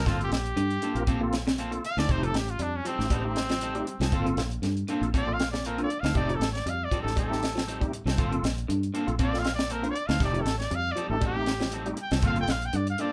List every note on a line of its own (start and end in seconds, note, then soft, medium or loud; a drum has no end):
0.06 0.27 G1 medium
0.06 0.20 A#3 medium
0.06 0.36 A#3 medium
0.06 0.20 C4 medium
0.06 0.36 C4 medium
0.06 0.20 F4 medium
0.06 0.36 F4 medium
0.06 0.36 A4 medium
0.06 0.19 A4 medium
0.06 kick medium
0.06 snare soft
0.06 closed hi-hat medium
0.20 0.32 G4 medium
0.20 muted clean electric guitar stroke soft
0.20 closed hi-hat soft
0.31 0.52 A#1 medium
0.31 1.31 G4 medium
0.31 muted clean electric guitar stroke soft
0.31 snare medium
0.31 closed hi-hat soft
0.46 closed hi-hat soft
0.56 0.77 G2 medium
0.56 0.76 D3 medium
0.56 muted clean electric guitar stroke soft
0.56 closed hi-hat medium
0.71 closed hi-hat soft
0.82 1.02 D3 medium
0.82 0.96 A#3 medium
0.82 0.95 F4 medium
0.82 0.95 A4 medium
0.82 muted clean electric guitar stroke medium
0.82 closed hi-hat medium
0.95 1.78 A#1 medium
0.95 1.03 A#3 loud
0.95 1.03 C4 medium
0.95 1.03 F4 medium
0.95 1.04 A#4 loud
0.95 muted clean electric guitar stroke soft
0.95 closed hi-hat soft
1.07 1.27 C3 medium
1.07 1.22 A#3 medium
1.07 1.21 C4 medium
1.07 1.21 F4 medium
1.07 1.21 A4 medium
1.07 kick medium
1.07 closed hi-hat medium
1.21 1.37 A#3 loud
1.21 1.37 C4 medium
1.21 1.37 F4 medium
1.21 1.37 A4 loud
1.21 muted clean electric guitar stroke soft
1.33 muted clean electric guitar stroke soft
1.33 snare medium
1.33 closed hi-hat soft
1.47 1.66 C3 medium
1.47 snare medium
1.58 1.72 A#3 medium
1.58 1.72 C4 medium
1.58 1.71 F4 medium
1.58 1.71 A4 medium
1.58 closed hi-hat medium
1.71 1.83 A#3 medium
1.71 1.83 C4 medium
1.71 1.83 F4 medium
1.71 1.83 A4 medium
1.71 muted clean electric guitar stroke soft
1.71 closed hi-hat soft
1.85 2.00 F5 loud
1.85 muted clean electric guitar stroke soft
1.85 closed hi-hat soft
1.97 2.07 D2 medium
1.97 2.17 D#3 medium
1.97 2.09 C4 soft
1.97 2.10 F4 soft
1.97 2.09 A4 medium
1.97 2.13 D5 medium
1.97 snare medium
1.97 closed hi-hat soft
2.08 2.30 F1 medium
2.08 2.23 G3 medium
2.08 2.38 A3 medium
2.08 2.38 C4 medium
2.08 2.23 C4 medium
2.08 2.38 D#4 medium
2.08 2.23 D#4 medium
2.08 2.38 G4 medium
2.08 2.23 A4 medium
2.08 2.26 C5 medium
2.08 kick medium
2.08 closed hi-hat medium
2.23 2.42 F3 medium
2.23 2.35 A4 medium
2.23 muted clean electric guitar stroke soft
2.23 closed hi-hat soft
2.34 2.55 A1 medium
2.34 2.52 G4 medium
2.34 muted clean electric guitar stroke soft
2.34 snare medium
2.34 closed hi-hat soft
2.48 2.64 F4 medium
2.48 closed hi-hat soft
2.59 2.80 F2 medium
2.59 2.79 G3 medium
2.59 2.78 D4 medium
2.59 muted clean electric guitar stroke soft
2.59 closed hi-hat medium
2.76 2.86 C#4 medium
2.85 3.04 F3 medium
2.85 2.99 G3 medium
2.85 2.99 C4 medium
2.85 3.11 C4 medium
2.85 2.99 D#4 medium
2.85 2.99 A4 medium
2.85 closed hi-hat medium
2.99 3.82 A1 medium
2.99 3.06 A3 medium
2.99 3.07 C4 medium
2.99 3.07 D#4 medium
2.99 3.07 G4 medium
2.99 muted clean electric guitar stroke soft
2.99 snare soft
3.10 3.30 G3 medium
3.10 3.25 G3 medium
3.10 3.25 C4 medium
3.10 4.10 C4 medium
3.10 3.24 D#4 medium
3.10 3.24 A4 medium
3.10 kick medium
3.10 closed hi-hat medium
3.24 3.40 A3 medium
3.24 3.40 C4 medium
3.24 3.40 D#4 medium
3.24 3.40 G4 medium
3.24 muted clean electric guitar stroke soft
3.36 muted clean electric guitar stroke soft
3.36 snare medium
3.36 closed hi-hat soft
3.49 3.69 F3 medium
3.49 snare medium
3.49 closed hi-hat soft
3.61 3.75 G3 medium
3.61 3.76 C4 medium
3.61 3.76 D#4 medium
3.61 3.75 A4 medium
3.61 closed hi-hat medium
3.75 3.95 G3 medium
3.75 3.86 A3 medium
3.75 3.86 C4 medium
3.75 3.87 D#4 medium
3.75 3.86 G4 medium
3.75 muted clean electric guitar stroke medium
3.75 closed hi-hat soft
3.87 muted clean electric guitar stroke soft
3.87 closed hi-hat medium
4.00 4.10 C2 medium
4.00 4.10 F3 medium
4.00 4.12 C4 soft
4.00 4.13 D#4 medium
4.00 4.12 A4 medium
4.00 snare medium
4.00 closed hi-hat soft
4.12 4.33 G1 medium
4.12 4.42 A#3 medium
4.12 4.42 C4 medium
4.12 4.26 C4 loud
4.12 4.42 F4 medium
4.12 4.27 F4 loud
4.12 4.42 A4 medium
4.12 4.26 A4 loud
4.12 muted clean electric guitar stroke medium
4.12 kick medium
4.12 closed hi-hat medium
4.26 4.45 C3 medium
4.26 muted clean electric guitar stroke soft
4.26 closed hi-hat soft
4.37 4.58 A#1 medium
4.37 muted clean electric guitar stroke soft
4.37 snare medium
4.37 closed hi-hat soft
4.51 closed hi-hat soft
4.62 4.83 G2 medium
4.62 4.83 D3 medium
4.62 muted clean electric guitar stroke soft
4.62 snare soft
4.62 closed hi-hat medium
4.77 closed hi-hat soft
4.88 5.08 D3 medium
4.88 5.02 A#3 medium
4.88 5.02 C4 medium
4.88 5.03 F4 medium
4.88 5.02 A4 medium
4.88 closed hi-hat medium
5.02 5.84 A#1 medium
5.02 5.09 A#3 medium
5.02 5.09 C4 medium
5.02 5.09 F4 medium
5.02 5.10 A4 medium
5.02 muted clean electric guitar stroke soft
5.02 closed hi-hat soft
5.14 5.33 C3 medium
5.14 5.28 A#3 medium
5.14 5.28 C4 medium
5.14 5.28 F4 medium
5.14 5.27 A4 medium
5.14 5.35 D5 loud
5.14 kick medium
5.14 closed hi-hat medium
5.27 5.43 A#3 medium
5.27 5.43 C4 medium
5.27 5.43 F4 medium
5.27 5.43 A4 medium
5.27 muted clean electric guitar stroke soft
5.33 5.48 F5 medium
5.40 muted clean electric guitar stroke soft
5.40 snare medium
5.40 closed hi-hat medium
5.51 5.73 C3 medium
5.51 5.68 D5 medium
5.51 snare medium
5.65 5.79 A#3 soft
5.65 5.79 C4 medium
5.65 5.78 F4 medium
5.65 5.78 A4 medium
5.65 5.82 A#4 medium
5.65 closed hi-hat medium
5.78 5.98 D3 medium
5.78 5.89 A#3 medium
5.78 5.89 C4 medium
5.78 5.89 F4 medium
5.78 5.90 A4 medium
5.78 muted clean electric guitar stroke soft
5.78 closed hi-hat soft
5.83 6.02 D5 medium
5.90 muted clean electric guitar stroke soft
5.90 closed hi-hat soft
6.00 6.13 D2 medium
6.00 6.23 D#3 medium
6.00 6.15 F5 medium
6.00 closed hi-hat soft
6.05 6.15 C4 soft
6.05 6.16 F4 soft
6.05 6.16 A4 soft
6.05 snare medium
6.15 6.36 F1 medium
6.15 6.44 A3 medium
6.15 6.44 C4 medium
6.15 6.29 C4 medium
6.15 6.44 D#4 medium
6.15 6.29 D#4 medium
6.15 6.44 G4 medium
6.15 6.28 A4 medium
6.15 6.37 D5 medium
6.15 muted clean electric guitar stroke medium
6.15 kick medium
6.15 closed hi-hat medium
6.29 6.49 F3 medium
6.29 muted clean electric guitar stroke soft
6.29 closed hi-hat soft
6.35 6.50 A4 medium
6.40 6.61 A1 medium
6.40 muted clean electric guitar stroke soft
6.40 snare medium
6.40 closed hi-hat medium
6.52 6.71 D5 medium
6.52 closed hi-hat soft
6.56 snare soft
6.66 6.86 F2 medium
6.66 6.86 G3 medium
6.66 6.86 F5 medium
6.66 muted clean electric guitar stroke soft
6.66 closed hi-hat medium
6.84 7.00 D5 medium
6.91 7.11 F3 medium
6.91 7.05 G3 soft
6.91 7.06 C4 medium
6.91 7.05 D#4 medium
6.91 7.05 A4 medium
6.91 kick medium
6.91 closed hi-hat medium
7.02 7.87 A1 medium
7.02 7.12 A3 medium
7.02 7.12 C4 medium
7.02 7.12 D#4 medium
7.02 7.12 G4 medium
7.02 7.17 A4 medium
7.07 muted clean electric guitar stroke soft
7.07 snare soft
7.16 7.36 G3 medium
7.16 7.31 G3 medium
7.16 7.30 C4 medium
7.16 7.30 D#4 medium
7.16 7.67 A4 medium
7.16 muted clean electric guitar stroke loud
7.16 kick medium
7.16 closed hi-hat medium
7.30 7.46 A3 medium
7.30 7.46 C4 medium
7.30 7.46 D#4 medium
7.30 7.46 G4 medium
7.30 muted clean electric guitar stroke soft
7.30 snare soft
7.43 muted clean electric guitar stroke soft
7.43 snare medium
7.43 closed hi-hat soft
7.55 7.75 F3 medium
7.55 snare medium
7.55 closed hi-hat soft
7.67 7.81 G3 medium
7.67 7.81 C4 medium
7.67 7.81 D#4 medium
7.67 7.80 A4 medium
7.67 closed hi-hat medium
7.81 8.00 G3 medium
7.81 7.92 A3 medium
7.81 7.92 C4 medium
7.81 7.92 D#4 medium
7.81 7.92 G4 medium
7.81 muted clean electric guitar stroke soft
7.81 kick medium
7.81 closed hi-hat soft
7.93 muted clean electric guitar stroke soft
7.93 closed hi-hat medium
8.05 8.15 C2 medium
8.05 8.15 F3 medium
8.05 8.18 C4 soft
8.05 8.18 D#4 soft
8.05 8.18 A4 soft
8.05 snare medium
8.05 closed hi-hat soft
8.17 8.39 G1 medium
8.17 8.47 A#3 medium
8.17 8.32 A#3 medium
8.17 8.47 C4 medium
8.17 8.32 C4 medium
8.17 8.47 F4 medium
8.17 8.32 F4 medium
8.17 8.47 A4 loud
8.17 8.33 A4 loud
8.17 kick medium
8.17 closed hi-hat medium
8.32 8.51 C3 medium
8.32 muted clean electric guitar stroke soft
8.32 closed hi-hat soft
8.43 8.64 A#1 medium
8.43 muted clean electric guitar stroke soft
8.43 snare medium
8.43 closed hi-hat soft
8.58 closed hi-hat soft
8.68 8.90 G2 medium
8.68 8.88 D3 medium
8.68 muted clean electric guitar stroke soft
8.68 closed hi-hat medium
8.83 closed hi-hat soft
8.94 9.13 D3 medium
8.94 9.08 A#3 medium
8.94 9.07 C4 medium
8.94 9.07 F4 medium
8.94 9.07 A4 medium
8.94 closed hi-hat soft
9.07 9.91 A#1 medium
9.07 9.15 A#3 medium
9.07 9.15 C4 medium
9.07 9.15 F4 medium
9.07 9.15 A4 medium
9.07 muted clean electric guitar stroke soft
9.07 closed hi-hat soft
9.19 9.39 C3 medium
9.19 9.33 A#3 medium
9.19 9.33 C4 medium
9.19 9.33 F4 medium
9.19 9.32 A4 medium
9.19 kick medium
9.19 closed hi-hat medium
9.23 9.41 D5 medium
9.32 9.49 A#3 medium
9.32 9.48 C4 medium
9.32 9.49 F4 medium
9.32 9.49 A4 medium
9.32 muted clean electric guitar stroke soft
9.32 snare soft
9.39 9.54 F5 medium
9.44 muted clean electric guitar stroke soft
9.44 snare medium
9.44 closed hi-hat soft
9.55 9.74 D5 medium
9.55 muted clean electric guitar stroke medium
9.59 snare medium
9.69 9.84 A#3 medium
9.69 9.83 C4 medium
9.69 9.83 A4 medium
9.69 9.87 A#4 medium
9.69 muted clean electric guitar stroke medium
9.69 closed hi-hat medium
9.82 10.03 D3 medium
9.82 9.95 A#3 medium
9.82 9.94 C4 medium
9.82 9.95 F4 medium
9.82 9.95 C5 medium
9.82 muted clean electric guitar stroke soft
9.82 closed hi-hat soft
9.90 10.09 D5 medium
9.95 muted clean electric guitar stroke soft
9.95 closed hi-hat soft
10.07 10.18 D2 medium
10.07 10.29 D#3 medium
10.07 10.19 C4 soft
10.07 10.20 F4 soft
10.07 10.19 A4 soft
10.07 10.22 F5 medium
10.07 snare medium
10.07 closed hi-hat soft
10.20 10.41 F1 medium
10.20 10.34 G3 medium
10.20 10.49 A3 medium
10.20 10.50 C4 medium
10.20 10.33 C4 medium
10.20 10.50 D#4 medium
10.20 10.33 D#4 medium
10.20 10.50 G4 medium
10.20 10.33 A4 medium
10.20 kick medium
10.20 snare soft
10.20 closed hi-hat medium
10.24 10.43 D5 medium
10.34 10.53 F3 medium
10.34 muted clean electric guitar stroke soft
10.34 closed hi-hat soft
10.41 10.66 A1 medium
10.41 10.56 A4 medium
10.45 muted clean electric guitar stroke soft
10.45 snare medium
10.45 closed hi-hat soft
10.58 10.77 D5 medium
10.58 snare soft
10.58 closed hi-hat soft
10.71 10.92 F2 medium
10.71 10.90 G3 medium
10.71 muted clean electric guitar stroke soft
10.71 closed hi-hat medium
10.75 10.93 F5 loud
10.92 11.06 D5 medium
10.96 11.15 F3 medium
10.96 11.10 G3 medium
10.96 11.09 C4 medium
10.96 11.09 D#4 medium
10.96 11.09 A4 medium
10.96 closed hi-hat soft
11.09 11.93 A1 medium
11.09 11.18 A3 medium
11.09 11.18 C4 medium
11.09 11.18 D#4 medium
11.09 11.18 G4 medium
11.09 11.24 A4 medium
11.09 muted clean electric guitar stroke soft
11.20 11.41 G3 medium
11.20 11.36 G3 medium
11.20 11.35 C4 medium
11.20 11.35 D#4 loud
11.20 11.35 A4 medium
11.20 kick medium
11.20 closed hi-hat medium
11.26 11.73 G4 loud
11.36 11.51 A3 medium
11.36 11.52 C4 medium
11.36 11.52 D#4 medium
11.36 11.52 G4 medium
11.36 muted clean electric guitar stroke soft
11.46 muted clean electric guitar stroke soft
11.46 snare medium
11.46 closed hi-hat soft
11.60 11.80 F3 medium
11.60 snare medium
11.60 closed hi-hat soft
11.72 11.87 G3 medium
11.72 11.87 C4 medium
11.72 11.87 D#4 medium
11.72 11.85 A4 medium
11.72 closed hi-hat medium
11.86 12.06 G3 medium
11.86 11.98 A3 medium
11.86 11.98 C4 medium
11.86 11.98 D#4 medium
11.86 11.98 G4 medium
11.86 muted clean electric guitar stroke soft
11.86 closed hi-hat soft
11.97 muted clean electric guitar stroke soft
11.97 closed hi-hat soft
12.02 12.13 G5 medium
12.11 12.21 C2 medium
12.11 12.21 F3 medium
12.11 12.22 C4 soft
12.11 12.24 D#4 soft
12.11 12.23 A4 medium
12.11 snare medium
12.11 closed hi-hat soft
12.22 12.43 G1 medium
12.22 12.52 A#3 medium
12.22 12.37 A#3 medium
12.22 12.53 C4 medium
12.22 12.37 C4 medium
12.22 12.52 F4 medium
12.22 12.36 F4 medium
12.22 12.53 A4 medium
12.22 12.36 A4 medium
12.22 12.38 F5 loud
12.22 kick medium
12.22 closed hi-hat medium
12.36 12.56 C3 medium
12.36 muted clean electric guitar stroke soft
12.36 closed hi-hat soft
12.41 12.53 G5 loud
12.48 12.69 A#1 medium
12.48 12.67 F5 medium
12.48 muted clean electric guitar stroke soft
12.48 snare medium
12.48 closed hi-hat medium
12.62 12.78 G5 medium
12.62 closed hi-hat soft
12.73 12.94 G2 medium
12.73 12.93 D3 medium
12.73 12.88 D5 medium
12.73 muted clean electric guitar stroke soft
12.73 closed hi-hat medium
12.87 13.02 F5 medium
12.87 closed hi-hat soft
12.98 13.12 D3 medium
12.98 13.12 A#3 medium
12.98 13.12 C4 medium
12.98 13.12 F4 medium
12.98 13.12 A4 medium
12.98 13.12 D5 medium
12.98 closed hi-hat medium